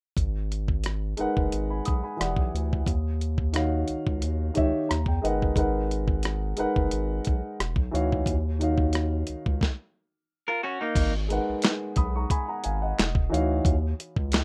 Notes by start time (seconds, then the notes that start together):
0.17 G#1, kick, closed hi-hat
0.52 closed hi-hat
0.68 kick
0.84 cross-stick, closed hi-hat
1.17 F#1 G#3 D#4 A#4 B4 F#5, closed hi-hat
1.37 F#1, kick
1.52 G#1, closed hi-hat
1.70 G#5 B5
1.85 B1 B5 D#6, kick, closed hi-hat
2.03 G#5 B5
2.17 E1 E3 E4 G4 D5
2.21 F#5, cross-stick, closed hi-hat
2.36 B1, kick
2.54 D2, closed hi-hat
2.73 kick
2.86 D#2, kick, closed hi-hat
3.21 closed hi-hat
3.38 kick
3.53 D#3 D#4 F#4 C#5 F5, cross-stick, closed hi-hat
3.88 C#2, closed hi-hat
4.07 C#2, kick
4.22 D#2, closed hi-hat
4.54 D#3 D#4 G4 C#5 E5, kick, closed hi-hat
4.58 C#2
4.89 D#2 A#5, cross-stick, closed hi-hat
5.06 E2 G5, kick
5.22 G1 G#3 D#4 A#4 B4 D#5 F#5, closed hi-hat
5.42 kick
5.55 G#1 G#3 D#4 A#4 B4 F#5, kick, closed hi-hat
5.91 closed hi-hat
6.08 kick
6.23 cross-stick, closed hi-hat
6.56 F#1 G#3 D#4 A#4 B4 F#5, closed hi-hat
6.76 F#1, kick
6.91 G#1, closed hi-hat
7.25 B1, kick, closed hi-hat
7.60 E1, cross-stick, closed hi-hat
7.76 B1, kick
7.91 D2 E3 D#4 F#4 C#5 F5, closed hi-hat
8.12 kick
8.26 D#2, kick, closed hi-hat
8.59 D#3 D#4 F#4 C#5, closed hi-hat
8.63 F5
8.78 kick
8.93 cross-stick, closed hi-hat
9.27 C#2, closed hi-hat
9.46 C#2, kick
9.61 kick, snare
10.48 F4 A#4
10.63 C#4 F#4
10.81 A#3 D#4
10.95 G#1, kick, closed hi-hat, crash
11.28 G#3 D#4 A#4 B4, closed hi-hat
11.33 F#5
11.49 B1
11.62 snare, clap, closed hi-hat
11.96 B1 B5 D#6, kick, closed hi-hat
12.16 A#5 C#6
12.30 G#5 B5, kick, closed hi-hat
12.49 F#5 A#5
12.64 G#1 F5 G#5, closed hi-hat
12.82 D#5 F#5
12.99 E1, snare, clap, closed hi-hat
13.15 E1, kick
13.29 D2 E3 D#4 F#4 C#5 F5
13.34 closed hi-hat
13.65 D#2, kick, closed hi-hat
14.00 closed hi-hat
14.16 C#2, kick
14.32 snare, clap, closed hi-hat